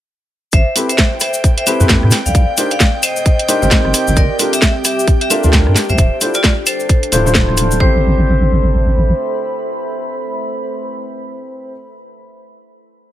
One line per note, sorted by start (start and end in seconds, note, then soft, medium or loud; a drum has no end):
0.52 0.65 A1 loud
0.52 2.96 A4 medium
0.52 0.73 C5 medium
0.52 0.73 E5 loud
0.52 7.81 G5 medium
0.52 kick loud
0.52 closed hi-hat medium
0.52 cabasa soft
0.76 0.87 C4 medium
0.76 0.87 E4 medium
0.76 0.87 G4 medium
0.76 0.87 A4 medium
0.76 0.87 B4 medium
0.76 open hi-hat loud
0.76 cabasa medium
0.89 1.08 C5 medium
0.89 1.08 E5 medium
0.89 closed hi-hat medium
0.89 cabasa soft
0.98 kick loud
0.98 snare loud
0.98 closed hi-hat medium
0.98 cabasa soft
1.20 1.41 C5 medium
1.20 1.41 E5 medium
1.20 cross-stick soft
1.20 open hi-hat loud
1.20 cabasa medium
1.25 2.96 C5 medium
1.34 cabasa medium
1.44 kick loud
1.44 closed hi-hat medium
1.44 cabasa soft
1.58 1.83 C5 medium
1.58 1.83 E5 medium
1.58 closed hi-hat medium
1.67 1.78 C4 medium
1.67 1.78 E4 medium
1.67 1.78 G4 medium
1.67 1.78 A4 medium
1.67 1.78 B4 loud
1.67 open hi-hat loud
1.67 cabasa medium
1.67 claves medium
1.80 2.04 E2 medium
1.80 2.11 C4 medium
1.80 2.11 E4 medium
1.80 2.11 G4 medium
1.80 2.11 A4 medium
1.80 2.11 B4 loud
1.80 cabasa medium
1.89 kick loud
1.89 snare loud
1.89 closed hi-hat medium
1.89 cabasa soft
2.03 2.11 A2 loud
2.03 cross-stick soft
2.11 4.79 C4 medium
2.11 cross-stick soft
2.11 snare medium
2.11 open hi-hat loud
2.11 cabasa medium
2.26 2.34 C2 medium
2.26 2.51 D5 medium
2.26 2.51 F5 medium
2.26 cabasa medium
2.35 2.47 C2 loud
2.35 kick loud
2.35 closed hi-hat medium
2.35 cabasa soft
2.41 4.17 D#6 medium
2.57 2.69 D4 medium
2.57 2.69 D#4 medium
2.57 2.69 G4 medium
2.57 2.69 A#4 medium
2.57 2.69 C5 medium
2.57 open hi-hat loud
2.57 cabasa loud
2.71 2.90 D5 medium
2.71 2.90 F5 loud
2.71 closed hi-hat medium
2.71 cabasa medium
2.76 6.60 G4 medium
2.80 kick loud
2.80 snare loud
2.80 closed hi-hat medium
2.80 cabasa soft
3.03 4.09 C5 medium
3.03 4.09 D#5 loud
3.03 open hi-hat loud
3.03 cabasa loud
3.03 claves medium
3.16 cabasa medium
3.26 kick loud
3.26 closed hi-hat medium
3.26 cabasa soft
3.39 closed hi-hat medium
3.48 3.60 D4 medium
3.48 3.60 D#4 medium
3.48 3.60 G4 medium
3.48 3.60 A#4 medium
3.48 3.60 C5 loud
3.48 open hi-hat loud
3.48 cabasa loud
3.62 3.70 G1 medium
3.62 4.16 C4 loud
3.62 4.16 D#4 medium
3.62 4.16 G4 medium
3.62 4.16 A#4 medium
3.62 4.16 C5 loud
3.62 cabasa medium
3.71 kick loud
3.71 snare loud
3.71 closed hi-hat medium
3.71 cabasa soft
3.85 3.93 G1 loud
3.85 cross-stick soft
3.94 cross-stick soft
3.94 open hi-hat loud
3.94 cabasa loud
4.07 4.16 G1 medium
4.07 cabasa medium
4.17 4.29 G1 loud
4.17 4.37 A#4 medium
4.17 4.37 D5 loud
4.17 kick loud
4.17 closed hi-hat medium
4.17 cabasa soft
4.39 4.51 D4 medium
4.39 4.51 F4 medium
4.39 4.51 G4 medium
4.39 4.51 A4 medium
4.39 4.51 A#4 medium
4.39 open hi-hat loud
4.39 cabasa medium
4.47 6.59 D5 medium
4.53 4.72 G4 medium
4.53 4.72 E5 loud
4.53 closed hi-hat medium
4.53 cabasa medium
4.62 kick loud
4.62 snare loud
4.62 closed hi-hat medium
4.62 cabasa soft
4.85 5.05 G4 medium
4.85 5.05 E5 loud
4.85 cross-stick soft
4.85 open hi-hat loud
4.85 cabasa loud
4.99 cabasa medium
5.07 kick loud
5.07 closed hi-hat medium
5.07 cabasa soft
5.21 5.46 G4 medium
5.21 5.46 E5 loud
5.21 closed hi-hat medium
5.30 5.42 D4 loud
5.30 5.42 F4 medium
5.30 5.42 G4 medium
5.30 5.42 A4 medium
5.30 5.42 A#4 loud
5.30 open hi-hat medium
5.30 cabasa medium
5.30 claves medium
5.43 5.68 D2 medium
5.43 5.75 D4 medium
5.43 5.75 F4 medium
5.43 5.75 G4 medium
5.43 5.75 A4 medium
5.43 5.75 A#4 loud
5.43 cabasa medium
5.53 kick loud
5.53 snare loud
5.53 closed hi-hat medium
5.53 cabasa soft
5.67 5.75 G2 loud
5.67 cross-stick soft
5.76 7.80 D4 loud
5.76 cross-stick soft
5.76 snare medium
5.76 open hi-hat loud
5.76 cabasa loud
5.89 5.97 D2 medium
5.89 6.15 C5 medium
5.89 6.15 E5 medium
5.89 cabasa medium
5.98 6.10 D1 loud
5.98 kick loud
5.98 closed hi-hat medium
5.98 cabasa soft
6.04 7.79 A4 medium
6.21 6.33 D4 medium
6.21 6.33 E4 medium
6.21 6.33 F4 medium
6.21 6.33 A4 medium
6.21 6.33 C5 medium
6.21 open hi-hat loud
6.21 cabasa medium
6.34 6.54 F4 medium
6.34 6.54 D5 loud
6.34 closed hi-hat medium
6.34 cabasa medium
6.44 kick loud
6.44 snare loud
6.44 closed hi-hat medium
6.44 cabasa soft
6.66 7.73 A4 medium
6.66 7.73 C5 medium
6.66 open hi-hat loud
6.66 cabasa medium
6.66 claves medium
6.80 cabasa medium
6.89 kick loud
6.89 closed hi-hat medium
6.89 cabasa soft
7.03 closed hi-hat medium
7.12 7.78 D1 loud
7.12 7.24 D4 loud
7.12 7.24 E4 medium
7.12 7.24 F4 medium
7.12 7.24 A4 medium
7.12 7.24 C5 loud
7.12 open hi-hat loud
7.12 cabasa loud
7.26 7.79 D4 medium
7.26 7.79 E4 medium
7.26 7.79 F4 medium
7.26 7.79 A4 medium
7.26 7.79 C5 loud
7.26 cabasa medium
7.35 kick loud
7.35 snare loud
7.35 closed hi-hat medium
7.35 cabasa soft
7.49 cross-stick soft
7.57 cross-stick soft
7.57 open hi-hat loud
7.57 cabasa medium
7.71 cabasa medium
7.80 9.13 A1 loud
7.80 11.72 C4 medium
7.80 11.72 E4 medium
7.80 11.72 G4 medium
7.80 11.72 A4 medium
7.80 11.72 C5 loud
7.80 11.72 C5 medium
7.80 kick loud
7.89 11.80 E5 medium
7.96 11.87 B5 medium